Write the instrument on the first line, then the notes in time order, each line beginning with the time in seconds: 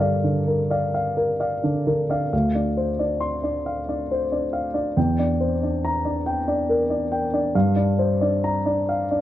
grand piano
Already playing: G2 D3 A#4
0.00 D4 D5 F5
0.24 D3
0.47 A#4
0.70 D5 F5
0.94 F5
1.17 A#4
1.40 D5 F5
1.64 D3 D4
1.87 D3 A#4
2.10 D4 D5 F5
2.33 D2 F5
2.55 D4 D5
2.77 C5
2.99 D4 D5
3.20 C6
3.44 D4 D5
3.66 F5
3.89 D4 D5
4.11 C5
4.32 D4 D5
4.53 F5
4.74 D4 D5
4.97 E2 G5
5.19 D4 D5
5.40 C5
5.63 D4 D5
5.85 A#5
6.05 D4 D5
6.26 G5
6.48 D4 D5
6.69 A#4
6.90 D4 D5
7.12 G5
7.34 D4 D5
7.55 G2 F5
7.76 D4 D5
7.99 C5
8.21 D4 D5
8.44 A#5
8.66 D4 D5
8.89 F5
9.11 D4 D5